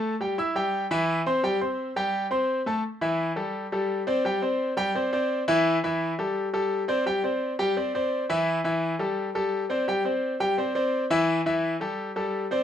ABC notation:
X:1
M:4/4
L:1/8
Q:1/4=171
K:Am
V:1 name="Grand piano"
[A,Aa] [G,Gg] [Eee'] [G,Gg]2 [E,Ee]2 [Ccc'] | [G,Gg] [Ccc']2 [G,Gg]2 [Ccc']2 [A,Aa] | z [E,Ee]2 [G,GA]2 [G,GA]2 [Ccd] | [G,Gg] [Ccd]2 [G,Gg] [Ccd] [Ccd]2 [E,Ee]- |
[E,Ee] [E,Ee]2 [G,GA]2 [G,GA]2 [Ccd] | [G,Gg] [Ccd]2 [G,Gg] [Ccd] [Ccd]2 [E,Ee]- | [E,Ee] [E,Ee]2 [G,GA]2 [G,GA]2 [Ccd] | [G,Gg] [Ccd]2 [G,Gg] [Ccd] [Ccd]2 [E,Ee]- |
[E,Ee] [E,Ee]2 [G,GA]2 [G,GA]2 [Ccd] |]